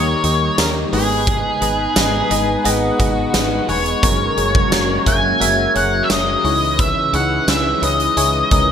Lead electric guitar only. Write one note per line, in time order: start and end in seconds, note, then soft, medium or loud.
0.00 0.61 C#5 loud
0.59 0.68 A#4 medium
0.94 2.75 G#4 medium
2.75 3.77 F#4 medium
3.70 5.11 C#5 medium
5.08 5.72 G#5 loud
5.77 6.04 F#5 loud
6.04 6.10 E5 medium
6.11 6.80 D#5 loud
6.80 7.15 E5 loud
7.15 7.50 F#5 loud
7.49 7.81 E5 loud
7.84 8.72 D#5 loud